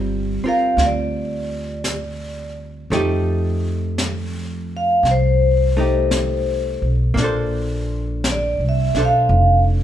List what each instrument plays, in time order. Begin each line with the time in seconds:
Already playing: upright bass G1, hollow-body jazz guitar G3 C4 F4 A#4
0.44 hollow-body jazz guitar C4 F4 A#4, muted upright bass stroke
0.49 vibraphone F5
0.77 upright bass D2, brush sweep, snare
0.85 vibraphone D5
1.84 brush sweep, snare, hi-hat pedal
2.90 upright bass F2, hollow-body jazz guitar F3 A3 D#4 G4, brush sweep, snare
3.98 brush sweep, snare, hi-hat pedal
4.77 vibraphone F5
5.03 upright bass C2, brush sweep, snare
5.11 vibraphone C5
5.77 hollow-body jazz guitar A3 D#4 G4
6.11 brush sweep, snare, hi-hat pedal
6.82 upright bass B1
7.14 upright bass A#1, hollow-body jazz guitar A#3, brush sweep, snare
7.18 hollow-body jazz guitar D4
7.22 hollow-body jazz guitar A4 C5
8.24 brush sweep, snare, hi-hat pedal
8.30 vibraphone D5
8.59 upright bass C2
8.69 vibraphone E5
8.94 upright bass B1, hollow-body jazz guitar D4 A4, snare
9.00 hollow-body jazz guitar C5
9.05 vibraphone F5
9.29 upright bass F1, brush sweep